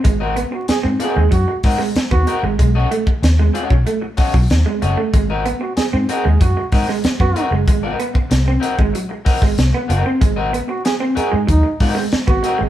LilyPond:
<<
  \new Staff \with { instrumentName = "Clean electric guitar" } { \time 4/4 \key aes \mixolydian \tempo 4 = 94 r16 <c' ges' bes' ees''>16 r4 <c' ges' bes' ees''>16 r8. <c' ges' bes' ees''>16 r8. <c' ges' bes' ees''>16 r16 | r16 <cis' fis' a' dis''>16 r4 <cis' fis' a' dis''>16 r8. <cis' fis' a' dis''>16 r8. <cis' fis' a' dis''>16 r16 | r16 <c' ges' bes' ees''>16 r4 <c' ges' bes' ees''>16 r8. <c' ges' bes' ees''>16 r8. <c' ges' bes' ees''>16 r16 | r16 <c' ges' bes' ees''>16 r4 <c' ges' bes' ees''>16 r8. <c' ges' bes' ees''>16 r8. <c' ges' bes' ees''>16 r16 |
r16 <c' ges' bes' ees''>16 r4 <c' ges' bes' ees''>16 r8. <c' ges' bes' ees''>16 r8. <c' ges' bes' ees''>16 r16 | }
  \new Staff \with { instrumentName = "Trombone" } { \time 4/4 \key aes \mixolydian r8. ges'16 aes'16 r16 aes'8 ges'8 r8. ges'8 r16 | r1 | r8. ges'16 aes'16 r16 aes'8 ges'8 r8. ges'8 r16 | r1 |
r8. ges'16 aes'16 r16 aes'8 ees'8 r8. ges'8 r16 | }
  \new Staff \with { instrumentName = "Clean electric guitar" } { \clef bass \time 4/4 \key aes \mixolydian aes16 r16 ces'16 r8 c'16 r16 aes16 ges16 r8 aes16 r16 ces'16 r16 aes16 | aes16 r16 a16 r8 aes16 r16 fis16 a16 r8 fis16 r16 aes16 r16 a16 | aes16 r16 ces'16 r8 c'16 r16 aes16 ges16 r8 aes16 r16 ces'16 r16 aes16 | aes16 r16 ces'16 r8 c'16 r16 aes16 ges16 r8 aes16 r16 ces'16 r16 c'16 |
aes16 r16 ces'16 r8 c'16 r16 aes16 ges16 r8 aes16 r16 ces'16 r16 aes16 | }
  \new Staff \with { instrumentName = "Fingered electric bass" } { \clef bass \time 4/4 \key aes \mixolydian aes,,8. r8 aes,16 r16 ees,16 ges,16 r16 aes,16 r8 ees,16 r16 aes,,16 | b,,8 r8 dis,8 r16 b,,16 r8. b,,16 dis,16 r16 fis,,16 r16 | aes,,8. r8 aes,16 r16 ees,16 ges,16 r16 aes,16 r8 ges,16 r16 ges,,16 | aes,,8 r8 c,8 r16 aes,,16 r8. aes,,16 c,16 r16 ges,,16 r16 |
aes,,8. r4 aes,16 ees,16 r16 aes,16 r8 aes,,16 r16 aes,,16 | }
  \new DrumStaff \with { instrumentName = "Drums" } \drummode { \time 4/4 <hh bd>8 hh8 <hh sn>8 hh8 <hh bd>8 <hho bd sn>16 sn16 <hh sn>16 bd16 hh8 | <hh bd>8 hh16 bd16 <hh sn>8 hh16 bd16 hh8 <hho bd sn>16 bd16 <hh sn>8 hh8 | <hh bd>8 hh8 <hh sn>8 hh8 <hh bd>8 <hho bd sn>16 sn16 <hh sn>16 bd16 hh8 | <hh bd>8 hh16 bd16 <hh sn>8 hh16 bd16 hh8 <hho bd sn>16 <bd sn>16 <hh sn>8 hh8 |
<hh bd>8 hh8 <hh sn>8 hh8 <hh bd>8 <hho bd sn>16 sn16 <hh sn>16 bd16 hh8 | }
>>